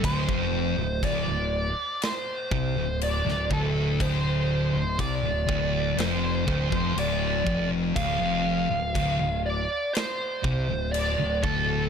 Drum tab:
CC |x---x---x---x---|x---x---x---x---|x---x---x---x---|
SD |--------o----o--|--------o-------|--------o-------|
BD |oo--o-----o---o-|o---o-o---oo--o-|o---o-----o---o-|